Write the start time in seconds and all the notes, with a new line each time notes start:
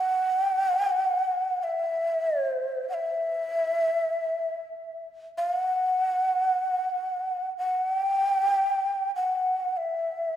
Already playing: F#5
0.44 G5
0.58 F#5
0.80 G5
0.93 F#5
1.63 E5
2.47 C5
2.89 F#5
2.94 E5
5.38 F5
5.55 F#5
7.58 F#5
7.94 G5
9.16 F#5
9.77 E5